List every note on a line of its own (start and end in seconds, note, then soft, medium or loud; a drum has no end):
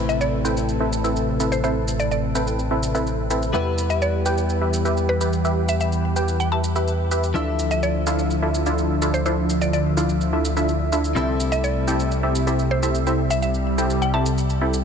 0.00 3.52 A1 medium
0.00 3.51 A2 medium
0.00 3.50 C3 medium
0.00 3.51 A3 medium
0.00 0.42 C4 medium
0.00 3.51 C4 medium
0.00 0.42 E4 medium
0.00 3.52 E4 medium
0.00 0.42 A4 medium
0.00 3.50 A4 medium
0.00 0.42 B4 medium
0.00 3.52 B4 medium
0.00 7.31 B4 medium
0.00 0.42 E5 loud
0.09 0.19 E5 medium
0.09 shaker soft
0.21 0.88 D5 medium
0.21 shaker soft
0.45 0.71 C4 medium
0.45 0.71 E4 medium
0.45 0.71 A4 medium
0.45 0.71 B4 medium
0.45 0.71 G5 loud
0.45 shaker medium
0.57 shaker soft
0.69 shaker soft
0.80 1.01 C4 medium
0.80 1.01 E4 medium
0.80 1.01 A4 medium
0.80 1.01 B4 medium
0.80 1.01 E5 medium
0.92 shaker medium
1.04 1.37 C4 medium
1.04 1.37 E4 medium
1.04 1.37 A4 medium
1.04 1.37 B4 medium
1.04 1.37 E5 medium
1.04 shaker soft
1.16 shaker soft
1.40 1.61 C4 medium
1.40 1.61 E4 medium
1.40 1.61 A4 medium
1.40 1.61 B4 medium
1.40 1.61 E5 medium
1.40 shaker medium
1.52 1.59 C5 medium
1.52 shaker soft
1.64 2.32 C4 medium
1.64 2.32 E4 medium
1.64 2.32 A4 medium
1.64 2.32 B4 medium
1.64 1.71 C5 medium
1.64 2.32 E5 loud
1.64 shaker soft
1.88 shaker medium
2.00 2.07 D5 medium
2.00 shaker soft
2.11 2.19 D5 medium
2.11 shaker soft
2.35 2.61 C4 loud
2.35 2.61 E4 medium
2.35 2.61 A4 medium
2.35 2.61 B4 medium
2.35 2.61 G5 loud
2.35 shaker medium
2.47 shaker soft
2.59 shaker soft
2.71 2.92 C4 medium
2.71 2.92 E4 medium
2.71 2.92 A4 medium
2.71 2.92 B4 medium
2.71 2.92 E5 medium
2.83 shaker medium
2.95 3.28 C4 medium
2.95 3.28 E4 medium
2.95 3.28 A4 medium
2.95 3.28 B4 medium
2.95 3.28 E5 medium
2.95 shaker soft
3.07 shaker soft
3.30 3.51 C4 medium
3.30 3.51 E4 medium
3.30 3.51 A4 medium
3.30 3.51 B4 medium
3.30 3.51 E5 loud
3.30 shaker medium
3.42 shaker soft
3.53 7.33 E2 medium
3.53 7.31 E3 medium
3.53 7.32 G3 medium
3.53 7.32 B3 medium
3.53 7.32 E4 medium
3.53 4.23 G4 medium
3.53 7.31 G4 medium
3.53 4.23 B4 medium
3.53 7.33 B4 medium
3.53 4.23 E5 medium
3.53 shaker soft
3.78 shaker medium
3.90 3.99 E5 medium
3.90 shaker soft
4.02 4.69 D5 medium
4.02 shaker soft
4.26 4.52 G4 medium
4.26 4.52 B4 medium
4.26 4.52 G5 loud
4.26 shaker medium
4.38 shaker soft
4.49 shaker soft
4.61 4.82 G4 medium
4.61 4.82 B4 medium
4.61 4.82 E5 medium
4.73 shaker medium
4.85 5.18 G4 medium
4.85 5.18 B4 medium
4.85 5.18 E5 medium
4.85 shaker soft
4.97 shaker soft
5.09 5.25 B4 medium
5.21 5.42 G4 medium
5.21 5.42 B4 medium
5.21 5.42 E5 medium
5.21 shaker medium
5.33 shaker soft
5.45 6.13 G4 medium
5.45 6.13 B4 medium
5.45 6.13 E5 medium
5.45 shaker soft
5.69 5.76 E5 medium
5.69 shaker medium
5.80 5.88 E5 medium
5.80 shaker soft
5.92 shaker soft
6.16 6.42 G4 medium
6.16 6.42 B4 medium
6.16 6.42 G5 loud
6.16 shaker medium
6.28 shaker soft
6.40 6.50 G5 medium
6.40 shaker soft
6.52 6.73 G4 medium
6.52 6.73 B4 medium
6.52 6.73 E5 medium
6.52 7.19 A5 medium
6.64 shaker medium
6.76 7.09 G4 medium
6.76 7.09 B4 medium
6.76 7.09 E5 medium
6.76 shaker soft
6.88 shaker soft
7.11 7.32 G4 medium
7.11 7.32 B4 medium
7.11 7.32 E5 loud
7.11 shaker medium
7.23 shaker soft
7.34 11.14 D2 medium
7.34 11.12 D3 medium
7.34 11.13 F3 medium
7.34 11.12 F3 medium
7.34 11.13 D4 medium
7.34 8.04 D4 medium
7.34 8.04 E4 medium
7.34 8.04 F4 medium
7.34 8.04 A4 medium
7.34 11.14 A4 medium
7.34 14.84 E5 medium
7.34 8.04 E5 loud
7.34 11.13 E5 medium
7.34 shaker soft
7.59 shaker medium
7.71 7.80 E5 medium
7.71 shaker soft
7.83 8.50 D5 medium
7.83 shaker soft
8.07 8.33 D4 medium
8.07 8.33 E4 medium
8.07 8.33 F4 medium
8.07 8.33 A4 medium
8.07 8.33 F5 loud
8.07 shaker medium
8.19 shaker soft
8.30 shaker soft
8.42 8.63 D4 medium
8.42 8.63 E4 medium
8.42 8.63 F4 medium
8.42 8.63 A4 medium
8.42 8.63 E5 medium
8.54 shaker medium
8.66 8.99 D4 medium
8.66 8.99 E4 medium
8.66 8.99 F4 medium
8.66 8.99 A4 medium
8.66 8.99 E5 medium
8.66 shaker soft
8.78 shaker soft
9.02 9.23 D4 medium
9.02 9.23 E4 medium
9.02 9.23 F4 medium
9.02 9.23 A4 medium
9.02 9.23 E5 loud
9.02 shaker medium
9.14 9.21 C5 medium
9.14 shaker soft
9.26 9.94 D4 medium
9.26 9.94 E4 medium
9.26 9.94 F4 medium
9.26 9.94 A4 medium
9.26 9.33 C5 medium
9.26 9.94 E5 medium
9.26 shaker soft
9.50 shaker medium
9.61 9.69 D5 medium
9.61 shaker soft
9.73 9.81 D5 medium
9.73 shaker soft
9.97 10.23 D4 medium
9.97 10.23 E4 medium
9.97 10.23 F4 medium
9.97 10.23 A4 medium
9.97 10.23 F5 loud
9.97 shaker medium
10.09 shaker soft
10.21 shaker soft
10.33 10.54 D4 medium
10.33 10.54 E4 medium
10.33 10.54 F4 medium
10.33 10.54 A4 medium
10.33 10.54 E5 medium
10.45 shaker medium
10.57 10.89 D4 medium
10.57 10.89 E4 medium
10.57 10.89 F4 medium
10.57 10.89 A4 medium
10.57 10.89 E5 medium
10.57 shaker soft
10.69 shaker soft
10.92 11.13 D4 medium
10.92 11.13 E4 medium
10.92 11.13 F4 medium
10.92 11.13 A4 medium
10.92 11.13 E5 medium
10.92 shaker medium
11.04 shaker soft
11.15 14.84 C2 medium
11.15 14.84 C3 medium
11.15 14.84 G3 medium
11.15 13.05 A3 medium
11.15 14.84 C4 medium
11.15 11.85 C4 medium
11.15 11.85 E4 medium
11.15 14.84 E4 medium
11.15 11.85 G4 medium
11.15 11.85 A4 medium
11.15 14.84 A4 medium
11.15 11.85 E5 loud
11.15 shaker soft
11.40 shaker medium
11.52 11.61 E5 medium
11.52 shaker soft
11.64 12.30 D5 medium
11.64 shaker soft
11.88 12.14 C4 medium
11.88 12.14 E4 medium
11.88 12.14 G4 medium
11.88 12.14 A4 medium
11.88 12.14 G5 loud
11.88 shaker medium
12.00 shaker soft
12.11 shaker soft
12.23 12.44 C4 medium
12.23 12.44 E4 medium
12.23 12.44 G4 medium
12.23 12.44 A4 medium
12.23 12.44 E5 medium
12.35 shaker medium
12.47 12.80 C4 medium
12.47 12.80 E4 medium
12.47 12.80 G4 medium
12.47 12.80 A4 medium
12.47 12.80 E5 medium
12.47 shaker soft
12.59 shaker soft
12.71 12.86 C5 medium
12.83 13.04 C4 medium
12.83 13.04 E4 medium
12.83 13.04 G4 medium
12.83 13.04 A4 medium
12.83 13.04 E5 loud
12.83 shaker medium
12.95 shaker soft
13.07 14.84 G3 medium
13.07 13.75 C4 medium
13.07 13.75 E4 medium
13.07 13.75 G4 medium
13.07 13.75 A4 medium
13.07 13.75 E5 loud
13.07 shaker soft
13.30 13.38 E5 medium
13.30 shaker medium
13.42 13.50 E5 medium
13.42 shaker soft
13.54 shaker soft
13.78 14.04 C4 medium
13.78 14.04 E4 medium
13.78 14.04 G4 medium
13.78 14.04 A4 medium
13.78 14.04 G5 loud
13.78 shaker medium
13.90 shaker soft
14.02 14.11 G5 loud
14.02 shaker soft
14.14 14.35 C4 medium
14.14 14.35 E4 medium
14.14 14.35 G4 medium
14.14 14.35 A4 medium
14.14 14.35 E5 medium
14.14 14.80 A5 medium
14.26 shaker medium
14.38 shaker soft
14.50 shaker soft
14.61 14.78 C4 medium
14.61 14.78 E4 medium
14.61 14.78 G4 medium
14.61 14.78 A4 medium
14.61 14.78 E5 medium
14.73 shaker medium